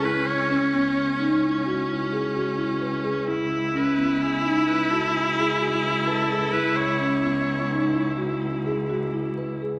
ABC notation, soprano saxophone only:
X:1
M:7/4
L:1/8
Q:1/4=129
K:C#m
V:1 name="Soprano saxophone"
B c6 z6 z | z2 B2 G2 B A G2 G2 A2 | B c6 z6 z |]